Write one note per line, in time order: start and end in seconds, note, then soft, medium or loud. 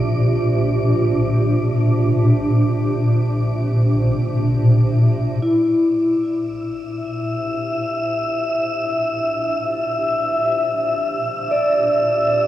0.00 5.41 A#2 medium
0.00 5.43 D4 medium
0.00 5.42 G4 medium
0.00 5.43 C5 medium
0.00 5.44 D5 medium
0.00 5.43 E5 medium
0.00 5.44 D6 medium
5.42 12.47 A#2 medium
5.42 8.10 E4 soft
5.42 12.47 E5 medium
5.42 12.47 E6 medium
6.12 12.47 C5 medium
6.19 12.47 D5 medium
6.23 12.47 D4 medium
6.54 12.47 G4 medium
11.51 12.47 D5 medium